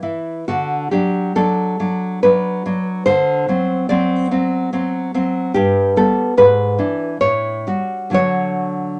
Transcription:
0.03 0.44 E3 soft
0.03 0.44 E4 soft
0.48 0.91 D3 soft
0.48 0.90 F#4 medium
0.91 1.35 F#3 soft
0.91 1.35 D4 soft
0.91 1.34 G4 soft
1.36 1.78 F#3 soft
1.36 1.79 D4 soft
1.36 2.19 A4 medium
1.80 2.22 F#3 soft
1.80 2.23 D4 soft
2.23 2.64 F#3 soft
2.23 2.65 D4 soft
2.23 3.03 B4 medium
2.66 3.03 F#3 soft
2.66 3.03 D4 soft
3.06 3.47 D3 medium
3.06 3.86 C5 medium
3.49 3.88 F#3 soft
3.49 3.89 C4 soft
3.89 4.30 F#3 soft
3.89 4.30 C4 soft
3.89 5.09 D5 medium
4.31 4.72 F#3 soft
4.31 4.72 C4 soft
4.73 5.13 F#3 soft
4.73 5.13 C4 soft
5.14 5.51 F#3 soft
5.14 5.51 C4 soft
5.54 5.95 G2 medium
5.54 5.94 G4 medium
5.96 6.33 G3 soft
5.96 6.33 B3 soft
5.96 6.36 A4 medium
6.37 6.77 G#2 soft
6.37 7.17 B4 medium
6.79 7.16 E3 soft
6.79 7.17 D4 soft
7.21 7.64 A2 soft
7.21 8.10 C#5 medium
7.67 8.10 G3 soft
7.67 8.10 F#4 soft
8.10 9.00 D3 soft
8.10 9.00 F#3 soft
8.10 9.00 F#4 soft
8.14 9.00 C#5 medium

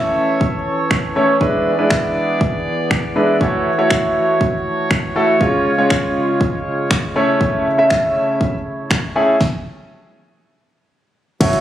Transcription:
0.00 5.37 E3 medium
0.00 0.54 A3 medium
0.00 0.54 C#4 medium
0.00 1.39 C#4 medium
0.00 0.54 E4 medium
0.00 1.39 A4 medium
0.00 1.37 C#5 medium
0.00 0.54 E5 medium
0.41 kick loud
0.91 finger snap loud
0.91 kick loud
1.16 1.35 A3 medium
1.16 1.35 C#4 medium
1.16 1.35 E4 medium
1.16 1.35 C#5 medium
1.41 1.69 G#3 medium
1.41 3.39 B3 medium
1.41 1.69 D4 medium
1.41 1.69 E4 medium
1.41 3.39 G#4 medium
1.41 1.69 B4 medium
1.41 3.39 D5 medium
1.41 kick loud
1.78 2.54 G#3 medium
1.78 2.54 D4 medium
1.78 2.54 E4 medium
1.78 2.54 B4 medium
1.90 finger snap loud
1.90 kick loud
2.41 kick loud
2.91 finger snap loud
2.91 kick loud
3.16 3.35 G#3 medium
3.16 3.35 D4 medium
3.16 3.35 E4 medium
3.16 3.35 B4 medium
3.41 3.69 A3 medium
3.41 5.39 A3 medium
3.41 3.69 E4 medium
3.41 5.39 F#4 medium
3.41 3.69 F#4 medium
3.41 9.37 C#5 medium
3.41 3.69 C#5 medium
3.41 kick loud
3.78 4.54 A3 medium
3.78 4.54 E4 medium
3.78 4.54 F#4 medium
3.78 4.54 C#5 medium
3.90 finger snap loud
3.90 kick loud
4.41 kick loud
4.91 finger snap loud
4.91 kick loud
5.16 5.35 A3 medium
5.16 5.35 E4 medium
5.16 5.35 F#4 medium
5.16 5.35 A4 medium
5.41 7.14 C#3 medium
5.41 5.69 G#3 medium
5.41 7.14 G#3 medium
5.41 5.69 C#4 medium
5.41 7.14 F4 medium
5.41 5.69 F4 medium
5.41 5.69 C#5 loud
5.41 kick loud
5.78 6.54 G#3 medium
5.78 6.54 C#4 medium
5.78 6.54 F4 medium
5.78 6.54 C#5 medium
5.90 finger snap loud
5.90 kick loud
6.41 kick loud
6.91 finger snap loud
6.91 kick loud
7.16 9.39 C#3 medium
7.16 7.66 A3 medium
7.16 9.39 A3 medium
7.16 7.66 C#4 medium
7.16 9.39 E4 medium
7.16 7.66 E4 medium
7.16 7.66 C#5 loud
7.41 kick loud
7.78 8.54 A3 medium
7.78 8.54 C#4 medium
7.78 8.54 E4 medium
7.78 8.54 E5 medium
7.90 finger snap loud
7.90 kick loud
8.41 kick loud
8.91 finger snap loud
8.91 kick loud
9.16 9.35 A3 medium
9.16 9.35 C#4 medium
9.16 9.35 E4 medium
9.16 9.35 G#4 loud
9.41 kick loud
9.41 snare medium
11.40 11.57 F#1 loud
11.40 11.61 C#3 medium
11.40 11.61 A3 medium
11.40 11.61 E4 medium
11.40 11.61 F#4 medium
11.40 11.61 C#5 medium
11.40 kick loud
11.40 crash loud
11.53 closed hi-hat soft

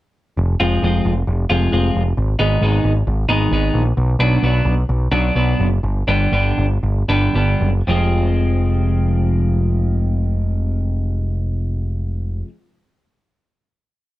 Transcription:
0.37 0.54 F1 medium
0.60 0.77 F1 medium
0.60 0.82 F3 medium
0.60 0.83 G#3 medium
0.60 0.83 C4 medium
0.60 0.83 F4 medium
0.83 0.99 F1 medium
0.83 1.12 F3 medium
0.83 1.13 G#3 medium
0.83 1.13 C4 medium
0.83 1.13 F4 medium
1.05 1.22 F1 medium
1.27 1.44 F1 medium
1.50 1.67 F1 medium
1.50 1.71 F3 medium
1.50 1.71 G#3 medium
1.50 1.72 C4 medium
1.50 1.72 F4 medium
1.72 1.89 F1 medium
1.72 2.02 F3 medium
1.72 2.02 G#3 medium
1.72 2.02 C4 medium
1.72 2.02 F4 medium
1.95 2.12 F1 medium
2.17 2.34 G#1 medium
2.39 2.56 G#1 medium
2.39 2.61 D#3 medium
2.39 2.61 G#3 medium
2.39 2.62 B3 medium
2.39 2.62 D#4 medium
2.61 2.79 G#1 medium
2.61 2.92 D#3 medium
2.61 2.92 G#3 medium
2.61 2.92 B3 medium
2.61 2.92 D#4 medium
2.84 3.01 G#1 medium
3.07 3.24 G#1 medium
3.29 3.46 G#1 medium
3.29 3.51 D#3 medium
3.29 3.51 G#3 medium
3.29 3.52 B3 medium
3.29 3.52 D#4 medium
3.52 3.69 G#1 medium
3.52 3.82 D#3 medium
3.52 3.82 G#3 medium
3.52 3.82 B3 medium
3.52 3.83 D#4 medium
3.74 3.92 A#1 medium
3.97 4.15 B1 medium
4.19 4.37 B1 medium
4.19 4.42 B2 medium
4.19 4.42 F#3 medium
4.19 4.43 B3 medium
4.19 4.43 D4 medium
4.43 4.60 B1 medium
4.43 4.73 B2 medium
4.43 4.73 F#3 medium
4.43 4.74 B3 medium
4.43 4.74 D4 medium
4.65 4.83 B1 medium
4.89 5.07 B1 medium
5.12 5.30 B1 medium
5.12 5.34 B2 medium
5.12 5.35 F#3 medium
5.12 5.35 B3 medium
5.12 5.35 D4 medium
5.35 5.54 B1 medium
5.35 5.67 B2 medium
5.35 5.67 F#3 medium
5.35 5.67 B3 medium
5.35 5.67 D4 medium
5.59 5.78 F#1 medium
5.83 6.02 G1 medium
6.07 6.26 G1 medium
6.07 6.31 D3 medium
6.07 6.31 G3 medium
6.07 6.32 B3 medium
6.07 6.32 D4 medium
6.32 6.51 G1 medium
6.32 6.65 D3 medium
6.32 6.65 G3 medium
6.32 6.65 B3 medium
6.32 6.66 D4 medium
6.58 6.77 G1 medium
6.83 7.02 G1 medium
7.08 7.28 G1 medium
7.08 7.34 D3 medium
7.08 7.34 G3 medium
7.08 7.34 B3 medium
7.08 7.35 D4 medium
7.34 7.54 G1 medium
7.34 7.69 D3 medium
7.34 7.69 G3 medium
7.34 7.70 B3 medium
7.34 7.70 D4 medium
7.61 7.81 F#1 medium
7.87 12.41 F1 medium
7.87 12.45 F2 medium
7.87 12.46 C3 medium
7.87 12.47 F3 medium
7.87 12.48 G#3 medium
7.87 12.49 C4 medium

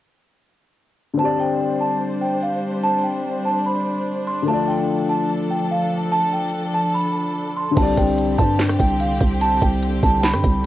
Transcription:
1.14 4.41 D3 medium
1.14 4.43 C4 medium
1.19 4.45 G3 medium
1.19 7.73 D4 medium
1.19 4.45 G4 medium
1.19 4.45 C5 medium
1.19 1.38 A5 medium
1.25 4.47 D5 medium
1.40 1.79 G5 medium
1.81 2.00 A5 medium
2.21 2.41 G5 medium
2.43 2.62 F5 medium
2.84 3.03 A5 loud
3.04 3.43 G5 medium
3.45 3.64 A5 medium
3.66 4.24 B5 medium
4.27 4.46 C6 medium
4.42 7.70 D3 medium
4.42 7.72 A3 medium
4.48 7.73 F3 medium
4.48 7.74 F4 medium
4.48 7.73 A4 medium
4.48 4.67 A5 medium
4.54 7.76 D5 medium
4.68 5.07 G5 medium
5.09 5.29 A5 medium
5.51 5.70 G5 medium
5.71 5.90 F5 medium
6.12 6.31 A5 loud
6.33 6.72 G5 medium
6.74 6.93 A5 medium
6.94 7.52 B5 medium
7.56 7.75 C6 medium
7.71 10.66 D3 medium
7.71 10.66 C4 medium
7.77 7.96 C2 loud
7.77 10.66 D3 medium
7.77 10.66 C4 medium
7.77 10.66 G4 medium
7.77 7.96 A5 medium
7.77 kick loud
7.77 closed hi-hat medium
7.77 crash loud
7.82 10.66 D5 medium
7.97 8.37 C2 loud
7.97 8.36 G5 medium
7.97 kick medium
7.97 closed hi-hat medium
8.18 closed hi-hat medium
8.38 8.78 G2 loud
8.38 8.57 A5 medium
8.38 kick medium
8.38 closed hi-hat medium
8.59 snare loud
8.59 clap medium
8.59 closed hi-hat medium
8.69 cross-stick loud
8.79 9.19 C2 loud
8.79 8.98 G5 medium
8.79 kick loud
8.79 closed hi-hat medium
9.00 9.19 F5 medium
9.00 closed hi-hat medium
9.21 9.60 C2 loud
9.21 kick loud
9.21 closed hi-hat medium
9.41 9.60 A5 loud
9.41 closed hi-hat medium
9.61 10.01 C2 loud
9.61 10.00 G5 medium
9.61 kick medium
9.61 closed hi-hat medium
9.83 closed hi-hat medium
10.03 10.35 C2 loud
10.03 10.22 A5 medium
10.03 kick medium
10.03 closed hi-hat medium
10.23 10.66 B5 medium
10.23 snare loud
10.23 clap medium
10.23 closed hi-hat medium
10.34 10.43 G2 loud
10.34 cross-stick loud
10.44 10.66 C2 loud
10.44 kick loud
10.44 closed hi-hat medium

